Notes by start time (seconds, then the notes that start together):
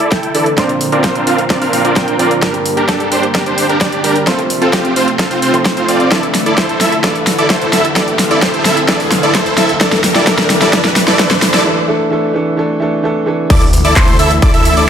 Already playing: D3 E3 A3 D4 E4 A4, riser
0.00 E4 A4 D5, closed hi-hat
0.12 E4 A4 G5, kick, snare, closed hi-hat
0.23 closed hi-hat
0.34 E3 A3 D4 E4 A4 D5, open hi-hat
0.46 closed hi-hat
0.57 A#2 F3 C4 D4 F4 A#4 C5 D5, kick, snare, closed hi-hat
0.69 closed hi-hat
0.81 open hi-hat
0.92 C4 D4 F4 A#4 D5, closed hi-hat
1.04 C4 D4 F4 A#4 C5, kick, snare, closed hi-hat
1.15 closed hi-hat
1.27 C4 D4 F4 A#4 F5, open hi-hat
1.38 closed hi-hat
1.50 C4 D4 F4 A#4 D5, kick, snare, closed hi-hat
1.61 C4 D4 F4 A#4 F5, open hi-hat
1.73 A#2 F3 C4 D4 A#4, open hi-hat
1.85 C4 D4 F4 A#4 D5, closed hi-hat
1.96 C4 D4 F4 A#4 G5, kick, snare, closed hi-hat
2.08 closed hi-hat
2.19 F3 C4 D4 F4 A#4 D5, open hi-hat
2.31 closed hi-hat
2.41 G2 G3 A#3 D4 G4 A#4, kick, snare, closed hi-hat
2.54 closed hi-hat
2.66 open hi-hat
2.77 D4 G4 A#4, closed hi-hat
2.88 D4 G4 A4, kick, snare, closed hi-hat
3.00 closed hi-hat
3.12 D4 G4 C5, open hi-hat
3.23 closed hi-hat
3.35 D4 G4 A#4, kick, snare, closed hi-hat
3.46 D4 G4 C5, closed hi-hat
3.58 open hi-hat
3.69 D4 G4 A#4, closed hi-hat
3.81 D4 G4 D5, kick, snare, closed hi-hat
3.92 closed hi-hat
4.03 G3 A#3 D4 G4 A#4, open hi-hat
4.16 closed hi-hat
4.26 C3 F3 A3 C4 F4 A4 C5, kick, snare, closed hi-hat
4.39 closed hi-hat
4.50 open hi-hat
4.62 C4 F4 A4, closed hi-hat
4.73 C4 F4 G4, kick, snare, closed hi-hat
4.85 closed hi-hat
4.96 C4 F4 C5, open hi-hat
5.08 closed hi-hat
5.19 C4 F4 A4, kick, snare, closed hi-hat
5.31 C4 F4 C5, open hi-hat
5.42 C4 F4 C5, open hi-hat
5.53 F3 A3 C4 C5, closed hi-hat
5.65 kick, snare, closed hi-hat
5.77 C4 F4 C5, closed hi-hat
5.89 C4 F4 D5, open hi-hat
6.00 closed hi-hat
6.10 D3 E3 A3 D4 E4 A4 D5, kick, snare, closed hi-hat
6.23 closed hi-hat
6.35 snare, open hi-hat
6.46 E4 A4 D5, closed hi-hat
6.58 E4 A4 C5, kick, snare, closed hi-hat
6.69 closed hi-hat
6.81 E4 A4 E5, snare, open hi-hat
6.92 closed hi-hat
7.03 E3 A3 D4 E4 A4 D5, kick, snare, closed hi-hat
7.15 closed hi-hat
7.27 snare, open hi-hat
7.38 E4 A4 D5, closed hi-hat
7.50 E4 A4 C5, kick, snare, closed hi-hat
7.62 closed hi-hat
7.73 E4 A4 E5, snare, open hi-hat
7.85 closed hi-hat
7.95 E3 A3 C4 D4 E4 A4 D5 F5, kick, snare, closed hi-hat
8.08 closed hi-hat
8.19 snare, open hi-hat
8.31 E4 A4 D5, closed hi-hat
8.42 E4 A4 C5, kick, snare, closed hi-hat
8.54 closed hi-hat
8.65 E4 A4 E5, snare, open hi-hat
8.77 closed hi-hat
8.87 E3 A3 D4 E4 A4 D5, kick, snare, closed hi-hat
9.00 open hi-hat
9.12 snare, open hi-hat
9.23 E4 A4 D5, closed hi-hat
9.35 E4 A4 C5, kick, snare, closed hi-hat
9.46 closed hi-hat
9.58 E4 A4 E5, snare, open hi-hat
9.69 closed hi-hat
9.80 E3 A3 D4 E4 G4 A4 D5, kick, snare, closed hi-hat
9.92 snare, closed hi-hat
10.04 snare, open hi-hat
10.15 E4 A4 D5, snare, closed hi-hat
10.26 E3 A3 D4 E4 A4 D5, kick, snare, closed hi-hat
10.39 snare, closed hi-hat
10.50 snare, open hi-hat
10.62 E4 A4 D5, snare, closed hi-hat
10.72 E3 A3 D4 E4 A4 D5, kick, snare, closed hi-hat
10.85 snare, closed hi-hat
10.96 snare, open hi-hat
11.08 E4 A4 D5, snare, closed hi-hat
11.18 E3 A3 D4 E4 A4 D5, kick, snare, closed hi-hat
11.31 snare, closed hi-hat
11.42 snare, open hi-hat
11.54 E4 A4 D5, snare, closed hi-hat
11.64 E3 A3 D4 A4
11.87 E3 A3 D4 A4
12.10 E3 A3 D4 A4
12.33 E3 A3 D4 A4
12.57 E3 A3 D4 A4
12.80 E3 A3 D4 A4
13.03 E3 A3 D4 A4
13.26 E3 A3 D4 A4
13.50 D2 D3 E3 A3 E4 A4 D5 D6, kick, closed hi-hat, crash, impact
13.62 closed hi-hat
13.73 open hi-hat
13.85 D2 E4 A4 D5 D6, closed hi-hat
13.96 D2 E4 A4 C5 C6, kick, clap, closed hi-hat
14.08 closed hi-hat
14.19 D2 E4 A4 E5 E6, open hi-hat
14.31 closed hi-hat
14.42 E4 A4 D5 D6, kick, closed hi-hat
14.54 D2 E4 A4 E5 E6, closed hi-hat
14.65 open hi-hat
14.77 D2 E4 A4 D5 D6, closed hi-hat